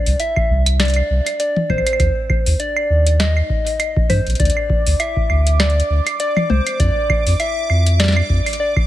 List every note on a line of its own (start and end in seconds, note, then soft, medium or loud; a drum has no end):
0.00 0.21 D5 loud
0.06 0.15 C2 loud
0.06 open hi-hat medium
0.20 0.81 E5 loud
0.20 closed hi-hat medium
0.36 kick medium
0.36 claves medium
0.50 1.02 C2 loud
0.66 closed hi-hat medium
0.66 claves medium
0.80 1.39 D5 loud
0.80 snare loud
0.80 closed hi-hat soft
0.82 closed hi-hat soft
0.85 closed hi-hat soft
0.88 closed hi-hat soft
0.90 closed hi-hat soft
0.94 closed hi-hat soft
0.94 claves medium
1.10 1.20 C2 loud
1.26 closed hi-hat medium
1.26 claves medium
1.40 1.71 D5 loud
1.40 closed hi-hat medium
1.56 high tom medium
1.70 1.80 A#1 medium
1.70 2.61 C5 loud
1.70 kick medium
1.70 high tom medium
1.70 claves soft
1.78 claves soft
1.87 closed hi-hat medium
1.87 claves medium
1.93 claves medium
2.00 2.10 D#2 loud
2.00 kick loud
2.00 closed hi-hat medium
2.00 claves soft
2.30 kick loud
2.30 claves medium
2.46 2.55 D#2 loud
2.46 open hi-hat medium
2.60 3.19 D5 loud
2.60 closed hi-hat soft
2.77 claves medium
2.90 3.42 D#2 loud
3.07 closed hi-hat medium
3.20 4.11 D#5 loud
3.20 snare loud
3.20 closed hi-hat medium
3.37 claves medium
3.50 kick medium
3.67 open hi-hat medium
3.80 closed hi-hat medium
3.80 claves medium
3.97 kick loud
4.10 4.20 G2 loud
4.10 4.41 C5 medium
4.10 open hi-hat medium
4.10 high tom medium
4.10 claves soft
4.27 4.35 A#1 medium
4.27 closed hi-hat soft
4.30 closed hi-hat soft
4.35 closed hi-hat soft
4.40 4.50 D2 loud
4.40 5.01 D5 loud
4.40 8.87 D6 medium
4.40 kick loud
4.40 closed hi-hat medium
4.45 closed hi-hat soft
4.50 closed hi-hat medium
4.57 claves medium
4.70 kick loud
4.87 4.95 D2 loud
4.87 open hi-hat medium
5.00 5.59 E5 loud
5.00 closed hi-hat soft
5.00 claves medium
5.17 kick medium
5.30 5.82 D2 loud
5.30 claves medium
5.47 closed hi-hat medium
5.60 6.16 D5 loud
5.60 snare loud
5.60 closed hi-hat soft
5.60 claves medium
5.70 closed hi-hat soft
5.80 closed hi-hat soft
5.90 6.00 D2 medium
6.07 closed hi-hat medium
6.07 claves medium
6.20 6.51 D5 loud
6.20 closed hi-hat medium
6.37 high tom medium
6.37 claves medium
6.50 6.60 C2 medium
6.50 6.81 C5 medium
6.50 high tom medium
6.67 closed hi-hat medium
6.67 claves soft
6.80 6.90 F2 loud
6.80 7.41 D5 loud
6.80 kick loud
6.80 closed hi-hat medium
7.10 kick loud
7.10 claves medium
7.26 7.35 F2 loud
7.26 open hi-hat medium
7.40 7.99 E5 loud
7.40 closed hi-hat soft
7.40 claves soft
7.70 8.22 F2 loud
7.70 claves medium
7.87 closed hi-hat medium
8.00 8.56 D5 loud
8.00 snare loud
8.00 closed hi-hat soft
8.04 snare medium
8.08 snare medium
8.12 snare medium
8.17 claves medium
8.30 8.40 F2 medium
8.30 kick medium
8.46 open hi-hat medium
8.46 claves medium
8.53 closed hi-hat soft
8.60 8.73 D5 loud
8.76 kick loud
8.76 claves medium